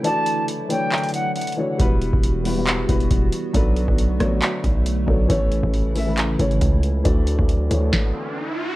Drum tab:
HH |x---x---x---x---xxxxx---xxxx----|x---x---x---o---x---x-x-x---x---|x---x---x---x---x---x---x-------|x---x---x---o---x---x-x-x---x---|
CP |----------------x---------------|----------------x---------------|----------------x---------------|----------------x---------------|
SD |--------------------------------|--------------------------------|------------r-------------------|--------------------------------|
BD |--------------------------------|o-----o-------------o---o-------|o-----o-------------o-------o---|o-----o-------------o---o-------|

HH |x---x---x---x-------------------|
CP |--------------------------------|
SD |----------------o---------------|
BD |o-----o---------o---------------|